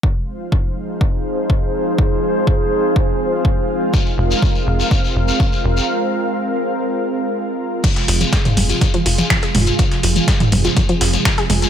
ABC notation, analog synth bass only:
X:1
M:4/4
L:1/8
Q:1/4=123
K:Fm
V:1 name="Analog synth bass" clef=bass
z8 | z8 | z F,,, z F,,, z F,,, z F,,, | z8 |
z F,,, z F,,, z F,,, z F,,, | z F,,, z F,,, z F,,, z F,,, |]